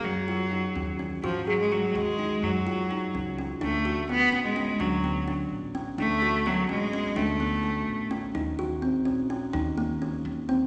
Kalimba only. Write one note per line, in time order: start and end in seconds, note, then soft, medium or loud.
0.00 0.13 C#4 medium
0.28 0.44 F4 medium
0.51 0.68 D#4 soft
0.76 0.92 C#4 medium
0.99 1.16 C#4 medium
1.24 1.40 F#4 medium
1.47 1.63 G#4 medium
1.72 1.88 F#4 soft
1.96 2.11 F#4 medium
2.19 2.51 D#4 medium
2.67 2.83 F4 medium
2.91 3.07 D#4 medium
3.15 3.30 C#4 medium
3.39 3.54 C#4 medium
3.61 3.77 D4 medium
3.85 4.01 F#4 medium
4.09 4.25 B3 medium
4.32 4.48 C#4 medium
4.56 4.72 C#4 medium
4.80 4.96 D4 medium
5.04 5.20 B3 medium
5.28 5.60 D4 medium
5.75 5.91 C#4 medium
5.98 6.14 D4 medium
6.22 6.38 F#4 medium
6.46 6.62 B3 medium
6.69 6.85 C#4 medium
6.93 7.09 C#4 medium
7.16 7.32 D4 medium
7.40 7.56 B3 medium
7.63 7.96 D4 soft
8.11 8.27 C#4 medium
8.35 8.51 D#4 medium
8.59 8.75 F#4 medium
8.82 8.98 C4 medium
9.05 9.22 C#4 medium
9.30 9.46 C#4 medium
9.53 9.69 D#4 medium
9.78 9.93 A#3 medium
10.02 10.34 C#4 medium
10.49 10.65 C4 medium